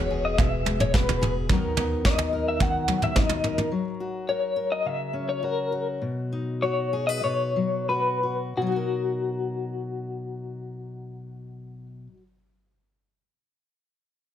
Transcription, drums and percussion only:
0.38 kick medium
0.38 floor tom medium
0.66 floor tom medium
0.80 mid tom medium
0.94 kick medium
0.94 snare medium
1.09 floor tom medium
1.22 mid tom medium
1.50 kick medium
1.50 floor tom medium
1.77 floor tom medium
2.05 kick medium
2.05 snare medium
2.18 floor tom medium
2.60 kick medium
2.60 floor tom medium
2.88 floor tom medium
3.02 mid tom medium
3.16 kick medium
3.16 snare medium
3.16 mid tom medium
3.29 floor tom medium
3.44 mid tom medium
3.58 mid tom medium

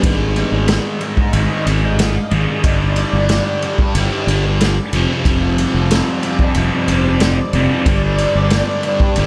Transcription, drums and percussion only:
0.03 kick loud
0.03 ride loud
0.36 ride medium
0.68 snare loud
0.68 ride medium
1.01 ride medium
1.17 kick medium
1.33 ride medium
1.67 ride medium
1.99 snare loud
1.99 ride medium
2.31 ride medium
2.64 kick loud
2.64 ride medium
2.96 ride medium
3.29 snare loud
3.29 ride medium
3.62 ride medium
3.79 kick medium
3.95 ride medium
4.28 ride medium
4.61 snare loud
4.61 ride medium
4.93 ride medium
5.25 kick loud
5.25 ride medium
5.58 ride medium
5.91 snare loud
5.91 ride loud
6.23 ride medium
6.39 kick medium
6.55 ride medium
6.88 ride medium
7.20 snare medium
7.20 ride medium
7.53 ride medium
7.86 kick loud
7.86 ride medium
8.18 ride medium
8.50 snare loud
8.50 ride medium
8.83 ride medium
9.00 kick loud
9.16 ride medium

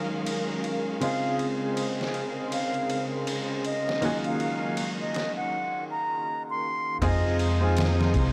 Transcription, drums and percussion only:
0.27 ride medium
0.64 ride medium
1.01 ride medium
1.39 ride medium
1.77 ride medium
2.01 snare soft
2.14 ride medium
2.52 ride medium
2.74 ride soft
2.90 ride medium
3.27 ride medium
3.65 ride medium
3.89 snare soft
4.02 ride medium
4.24 ride soft
4.40 ride medium
4.77 ride medium
5.14 snare medium
5.14 ride medium
7.02 kick loud
7.02 ride medium
7.39 ride medium
7.77 snare loud
7.77 ride medium
8.01 snare soft
8.14 kick loud
8.14 ride medium

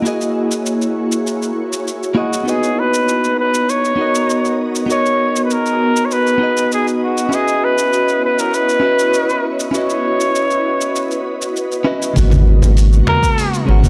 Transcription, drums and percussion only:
0.06 shaker soft
0.21 shaker soft
0.51 shaker medium
0.66 shaker soft
0.82 shaker soft
1.12 shaker medium
1.27 shaker soft
1.42 shaker soft
1.73 shaker medium
1.88 shaker soft
2.03 shaker soft
2.33 shaker medium
2.48 shaker soft
2.63 shaker soft
2.94 shaker medium
3.09 shaker medium
3.24 shaker soft
3.54 shaker medium
3.69 shaker soft
3.85 shaker soft
4.15 shaker medium
4.30 shaker soft
4.45 shaker soft
4.75 shaker medium
4.90 shaker soft
5.06 shaker soft
5.36 shaker medium
5.51 shaker soft
5.66 shaker soft
5.96 shaker medium
6.11 shaker soft
6.27 shaker soft
6.57 shaker medium
6.72 shaker soft
6.88 shaker soft
7.18 shaker medium
7.32 shaker soft
7.48 shaker soft
7.78 shaker medium
7.93 shaker soft
8.09 shaker soft
8.39 shaker medium
8.54 shaker soft
8.69 shaker soft
8.99 shaker medium
9.14 shaker soft
9.29 shaker soft
9.60 shaker medium
9.74 shaker soft
9.90 shaker soft
10.20 shaker medium
10.35 shaker soft
10.51 shaker soft
10.81 shaker medium
10.96 shaker soft
11.11 shaker soft
11.42 shaker medium
11.57 shaker soft
11.72 shaker soft
12.02 shaker medium
12.16 kick loud
12.16 open hi-hat medium
12.16 shaker medium
12.31 mid tom medium
12.31 open hi-hat soft
12.31 high conga medium
12.31 shaker soft
12.47 high bongo soft
12.62 open hi-hat soft
12.62 low conga loud
12.62 shaker medium
12.77 open hi-hat medium
12.77 shaker medium
12.93 shaker soft
13.07 finger snap medium
13.07 mid tom medium
13.07 high conga medium
13.23 kick loud
13.23 open hi-hat soft
13.23 shaker medium
13.38 open hi-hat medium
13.38 shaker medium
13.53 open hi-hat soft
13.53 shaker soft
13.69 high bongo medium
13.83 kick medium
13.83 open hi-hat soft
13.83 high conga medium
13.83 shaker medium

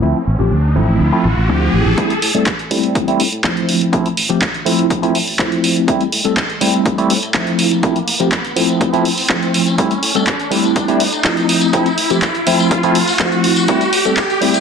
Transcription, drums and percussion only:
1.98 kick loud
1.98 closed hi-hat medium
2.10 closed hi-hat soft
2.22 open hi-hat loud
2.34 closed hi-hat soft
2.34 tambourine medium
2.46 kick loud
2.46 clap loud
2.46 closed hi-hat medium
2.59 closed hi-hat soft
2.71 open hi-hat loud
2.83 closed hi-hat soft
2.83 tambourine medium
2.95 kick loud
2.95 closed hi-hat loud
3.07 closed hi-hat soft
3.07 tambourine soft
3.20 open hi-hat loud
3.32 closed hi-hat soft
3.32 tambourine medium
3.44 kick loud
3.44 clap loud
3.44 closed hi-hat medium
3.57 closed hi-hat soft
3.69 open hi-hat loud
3.81 closed hi-hat soft
3.81 tambourine medium
3.93 kick loud
3.93 closed hi-hat medium
3.93 tambourine medium
4.05 closed hi-hat soft
4.05 tambourine soft
4.17 open hi-hat loud
4.30 closed hi-hat soft
4.30 tambourine medium
4.42 kick loud
4.42 clap loud
4.42 closed hi-hat medium
4.54 closed hi-hat soft
4.66 open hi-hat loud
4.78 closed hi-hat soft
4.78 tambourine medium
4.90 kick loud
4.90 closed hi-hat medium
4.90 tambourine medium
5.02 closed hi-hat soft
5.02 tambourine soft
5.15 open hi-hat loud
5.27 open hi-hat medium
5.27 tambourine medium
5.39 kick loud
5.39 clap loud
5.39 closed hi-hat medium
5.52 closed hi-hat soft
5.52 tambourine soft
5.64 open hi-hat loud
5.76 closed hi-hat soft
5.76 tambourine medium
5.88 kick loud
5.88 closed hi-hat medium
6.01 closed hi-hat soft
6.01 tambourine soft
6.12 open hi-hat loud
6.25 closed hi-hat soft
6.25 tambourine medium
6.37 kick loud
6.37 clap loud
6.37 closed hi-hat medium
6.49 closed hi-hat soft
6.49 tambourine soft
6.61 open hi-hat loud
6.74 tambourine medium
6.86 kick loud
6.86 closed hi-hat medium
6.86 tambourine medium
6.98 closed hi-hat soft
6.98 tambourine soft
7.10 open hi-hat loud
7.22 closed hi-hat soft
7.22 tambourine medium
7.34 kick loud
7.34 clap loud
7.34 closed hi-hat medium
7.47 closed hi-hat soft
7.47 tambourine soft
7.59 open hi-hat loud
7.71 closed hi-hat soft
7.71 tambourine medium
7.83 kick loud
7.83 closed hi-hat medium
7.83 tambourine medium
7.96 closed hi-hat soft
7.96 tambourine soft
8.08 open hi-hat loud
8.20 closed hi-hat soft
8.20 tambourine medium
8.32 kick loud
8.32 clap loud
8.32 closed hi-hat medium
8.32 tambourine medium
8.44 closed hi-hat soft
8.44 tambourine soft
8.56 open hi-hat loud
8.69 tambourine medium
8.81 kick loud
8.81 closed hi-hat medium
8.81 tambourine medium
8.94 closed hi-hat soft
8.94 tambourine soft
9.05 open hi-hat loud
9.18 open hi-hat medium
9.18 tambourine medium
9.30 kick loud
9.30 clap loud
9.43 closed hi-hat soft
9.43 tambourine soft
9.54 open hi-hat loud
9.67 closed hi-hat soft
9.67 tambourine medium
9.78 kick loud
9.78 closed hi-hat medium
9.78 tambourine medium
9.91 closed hi-hat soft
9.91 tambourine soft
10.03 open hi-hat loud
10.15 closed hi-hat soft
10.15 tambourine medium
10.27 kick loud
10.27 clap loud
10.27 closed hi-hat medium
10.40 closed hi-hat soft
10.40 tambourine soft
10.52 open hi-hat loud
10.64 closed hi-hat soft
10.64 tambourine medium
10.76 kick loud
10.76 closed hi-hat medium
10.76 tambourine medium
10.88 closed hi-hat soft
10.88 tambourine soft
11.00 open hi-hat loud
11.13 closed hi-hat soft
11.13 tambourine medium
11.24 kick loud
11.24 clap loud
11.24 closed hi-hat medium
11.24 tambourine medium
11.37 closed hi-hat soft
11.37 tambourine soft
11.49 open hi-hat loud
11.61 closed hi-hat soft
11.61 tambourine medium
11.73 kick loud
11.73 closed hi-hat medium
11.73 tambourine medium
11.86 closed hi-hat soft
11.86 tambourine soft
11.98 open hi-hat loud
12.10 closed hi-hat soft
12.10 tambourine medium
12.22 kick loud
12.22 clap loud
12.22 closed hi-hat medium
12.22 tambourine medium
12.34 closed hi-hat soft
12.34 tambourine soft
12.47 open hi-hat loud
12.59 closed hi-hat soft
12.59 tambourine medium
12.71 kick loud
12.71 closed hi-hat loud
12.71 tambourine medium
12.83 closed hi-hat soft
12.83 tambourine soft
12.95 open hi-hat loud
13.08 open hi-hat medium
13.08 tambourine medium
13.19 kick loud
13.19 clap loud
13.19 closed hi-hat medium
13.19 tambourine medium
13.32 closed hi-hat soft
13.32 tambourine soft
13.44 open hi-hat loud
13.56 closed hi-hat soft
13.56 tambourine medium
13.68 kick loud
13.68 closed hi-hat medium
13.68 tambourine medium
13.81 closed hi-hat soft
13.81 tambourine soft
13.93 open hi-hat loud
14.06 tambourine medium
14.17 kick loud
14.17 clap loud
14.17 closed hi-hat medium
14.17 tambourine medium
14.30 closed hi-hat soft
14.30 tambourine soft
14.42 open hi-hat loud
14.54 closed hi-hat soft
14.54 tambourine medium

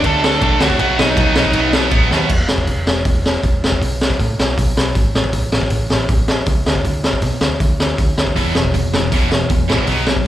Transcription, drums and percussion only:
0.04 kick loud
0.04 ride medium
0.24 snare loud
0.41 kick loud
0.41 ride medium
0.60 snare loud
0.70 kick medium
0.79 kick loud
0.79 ride medium
0.99 snare loud
1.17 kick loud
1.17 ride medium
1.36 snare loud
1.45 kick medium
1.53 kick loud
1.53 ride medium
1.73 snare loud
1.91 kick loud
1.91 ride medium
2.11 snare medium
2.30 kick loud
2.30 crash loud
2.48 snare loud
2.58 kick medium
2.67 kick medium
2.67 open hi-hat soft
2.87 snare loud
3.05 kick loud
3.05 open hi-hat soft
3.26 snare loud
3.43 kick loud
3.43 open hi-hat soft
3.64 snare loud
3.72 kick medium
3.82 kick medium
3.82 open hi-hat soft
4.01 snare loud
4.10 kick medium
4.20 kick medium
4.20 open hi-hat soft
4.39 snare loud
4.58 kick loud
4.58 open hi-hat medium
4.77 snare loud
4.95 kick loud
4.95 open hi-hat medium
5.15 snare loud
5.24 kick medium
5.33 kick medium
5.33 open hi-hat medium
5.52 snare loud
5.61 kick medium
5.70 kick medium
5.70 open hi-hat medium
5.90 snare loud
6.09 kick loud
6.09 open hi-hat medium
6.28 snare loud
6.46 kick loud
6.46 open hi-hat soft
6.66 snare loud
6.75 kick medium
6.85 kick medium
6.85 open hi-hat soft
7.04 snare medium
7.13 kick medium
7.22 kick medium
7.22 open hi-hat medium
7.41 snare loud
7.60 kick loud
7.60 open hi-hat medium
7.80 snare loud
7.98 kick medium
7.98 open hi-hat medium
8.18 snare medium
8.27 kick medium
8.36 kick medium
8.36 open hi-hat medium
8.55 snare loud
8.65 kick medium
8.74 kick medium
8.74 open hi-hat medium
8.94 snare loud
9.12 kick loud
9.12 open hi-hat medium
9.31 snare loud
9.49 kick medium
9.49 open hi-hat medium
9.70 snare loud
9.79 kick medium
9.87 kick medium
9.87 open hi-hat medium
10.07 snare loud
10.16 kick medium

